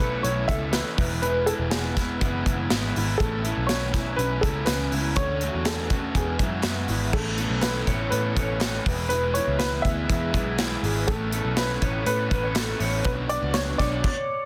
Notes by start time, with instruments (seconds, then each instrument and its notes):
Already playing: picked electric bass B1, clean electric guitar A3 E4
0.00 overdriven electric guitar B3 C#4 E4, clean electric guitar A4, upright piano B4, kick, closed hi-hat
0.23 picked electric bass B1, overdriven electric guitar A2 E3 B3 C#4 E4, upright piano C#5, closed hi-hat
0.48 picked electric bass C#2, overdriven electric guitar B3 C#4 E4, clean electric guitar A4, upright piano E5, kick, closed hi-hat
0.72 overdriven electric guitar E3 B3 C#4 E4, upright piano B4, snare, clap, closed hi-hat
0.97 picked electric bass E1, overdriven electric guitar E3 G#3 B3 E4, kick, open hi-hat
1.22 overdriven electric guitar E2 B2 E3 G#3 B3 E4, upright piano B4, closed hi-hat
1.46 overdriven electric guitar E3 G#3 B3 E4, upright piano A4, closed hi-hat
1.59 picked electric bass E1
1.70 overdriven electric guitar E3 G#3 B3 E4, upright piano G#4, snare, clap, closed hi-hat
1.95 overdriven electric guitar E3 G#3 B3 E4, kick, snare, closed hi-hat
2.21 picked electric bass F#1, overdriven electric guitar E2 B2 E3 G#3 B3 E4, kick, closed hi-hat
2.46 picked electric bass F#1, overdriven electric guitar E3 G#3 B3 E4, kick, closed hi-hat
2.70 picked electric bass G#1, overdriven electric guitar E3 G#3 B3 E4, snare, clap, closed hi-hat
2.95 picked electric bass G#1, overdriven electric guitar E3 G#3 B3 E4, open hi-hat
3.18 picked electric bass A1, overdriven electric guitar A2 E3 B3 C#4 E4, clean electric guitar A3, upright piano A4, kick, closed hi-hat
3.44 overdriven electric guitar B3 C#4 E4, closed hi-hat
3.57 picked electric bass B1
3.67 overdriven electric guitar E3 B3, upright piano C#5, snare, clap, closed hi-hat
3.71 overdriven electric guitar C#4 E4
3.93 overdriven electric guitar B3 C#4 E4, kick, snare, closed hi-hat
4.16 picked electric bass B1, overdriven electric guitar A2 E3 B3 C#4 E4, upright piano B4, closed hi-hat
4.41 picked electric bass C#2, overdriven electric guitar B3 C#4 E4, upright piano A4, kick, closed hi-hat
4.65 picked electric bass C#2, overdriven electric guitar E3 B3 C#4 E4, upright piano B4, snare, clap, closed hi-hat
4.91 picked electric bass C#2, overdriven electric guitar B3 C#4 E4, open hi-hat
5.16 picked electric bass D2, overdriven electric guitar D3 A3 C#4 F#4, upright piano C#5, kick, closed hi-hat
5.41 overdriven electric guitar A3 C#4 F#4, closed hi-hat
5.54 picked electric bass E2
5.65 overdriven electric guitar D3 A3 C#4 F#4, upright piano A4, snare, clap, closed hi-hat
5.90 overdriven electric guitar A3 C#4 F#4, kick, closed hi-hat
6.14 overdriven electric guitar E2 B2 E3 G#3 B3 F#4, picked electric bass E2, upright piano G#4, kick, closed hi-hat
6.39 picked electric bass F#2, overdriven electric guitar E3 G#3 B3 F#4, clean electric guitar E4, kick, closed hi-hat
6.63 picked electric bass F#2, overdriven electric guitar E3 G#3 B3 F#4, snare, clap, closed hi-hat
6.88 picked electric bass G#1, overdriven electric guitar E3 G#3 B3 F#4, clean electric guitar E4, open hi-hat
7.12 picked electric bass A1, overdriven electric guitar A2 E3 B3 C#4 E4, clean electric guitar A3, upright piano A4, kick, crash
7.38 overdriven electric guitar B3 C#4 E4, clean electric guitar A4, closed hi-hat
7.50 picked electric bass B1
7.61 overdriven electric guitar A2 E3 B3 C#4 E4, upright piano B4, snare, clap, closed hi-hat
7.87 picked electric bass A1, overdriven electric guitar B3 C#4 E4, clean electric guitar C#5, kick, closed hi-hat
8.10 picked electric bass A2, overdriven electric guitar E3 B3 C#4 E4, clean electric guitar A4, upright piano B4, closed hi-hat
8.36 picked electric bass A1, overdriven electric guitar B3 C#4 E4, clean electric guitar C#5, kick, closed hi-hat
8.60 overdriven electric guitar A2 E3 B3 C#4 E4, clean electric guitar A4, snare, clap, closed hi-hat
8.86 picked electric bass E1, overdriven electric guitar E3 G#3 B3 E4, kick, open hi-hat
9.09 overdriven electric guitar E2 B2 E3 G#3 B3, upright piano B4, closed hi-hat
9.13 overdriven electric guitar E4
9.34 overdriven electric guitar E3 G#3 B3 E4, upright piano C#5, closed hi-hat
9.47 picked electric bass C#2
9.59 overdriven electric guitar E2 B2 E3 G#3 B3 E4, upright piano B4, snare, clap, closed hi-hat
9.82 picked electric bass D2, overdriven electric guitar E4, clean electric guitar G#4, upright piano E5, kick, closed hi-hat
9.86 overdriven electric guitar E3 G#3 B3
10.10 picked electric bass E2, overdriven electric guitar E3 G#3 B3 E4, kick, closed hi-hat
10.34 picked electric bass B1, overdriven electric guitar E3 G#3 B3 E4, clean electric guitar G#4, kick, closed hi-hat
10.58 overdriven electric guitar E2 B2 E3 G#3 B3 E4, snare, clap, closed hi-hat
10.83 picked electric bass G#1, overdriven electric guitar E3 G#3 B3 E4, clean electric guitar G#4, open hi-hat
11.07 picked electric bass A1, overdriven electric guitar A2 A3 B3 C#4 E4, upright piano A4, kick, closed hi-hat
11.31 overdriven electric guitar B3 C#4 E4, clean electric guitar A4, closed hi-hat
11.45 picked electric bass B1
11.57 overdriven electric guitar A2 A3 B3 C#4 E4, upright piano B4, snare, clap, closed hi-hat
11.82 picked electric bass A1, overdriven electric guitar B3 C#4 E4, clean electric guitar C#5, kick, closed hi-hat
12.05 picked electric bass A2, overdriven electric guitar A3 B3 C#4 E4, clean electric guitar A4, upright piano B4, closed hi-hat
12.30 picked electric bass A1, overdriven electric guitar B3 C#4 E4, clean electric guitar B4, kick, closed hi-hat
12.44 clean electric guitar C#5
12.54 overdriven electric guitar A2 A3 B3 C#4 E4, clean electric guitar A4, snare, clap, closed hi-hat
12.79 picked electric bass A1, overdriven electric guitar B3 C#4 E4, clean electric guitar C#5, open hi-hat
13.05 picked electric bass B1, overdriven electric guitar B2 F#3 B3 D4 F#4 C#5, upright piano B4, kick, closed hi-hat
13.29 overdriven electric guitar B3 D4 F#4 C#5, upright piano D5, closed hi-hat
13.42 picked electric bass C#2
13.54 overdriven electric guitar B2 F#3 B3 D4 F#4 C#5, upright piano C#5, snare, clap, closed hi-hat
13.78 picked electric bass B1, overdriven electric guitar B3 D4 F#4 C#5, upright piano D5, kick, snare, closed hi-hat
14.04 kick, crash